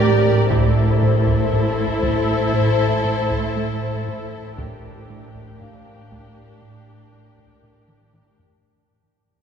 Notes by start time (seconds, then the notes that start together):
Already playing: A1 A2 C4 D4 G4 A#4 C5 D5
0.00 A2
0.50 A1 A2 E4 A4 C5, taiko
1.02 A2 C5
1.27 taiko
1.53 A2
2.03 A3, taiko
2.54 A2
3.05 A2
3.30 taiko
3.57 A3
4.08 A2
4.58 A1 A2 D4 G4 A#4, taiko
5.10 A2
5.35 taiko
5.60 A2 F5
6.12 A3, taiko
6.62 A2
7.13 A2
7.38 taiko
7.63 A3, taiko low-mid
7.88 taiko mid
8.14 A2, taiko mid
8.39 taiko low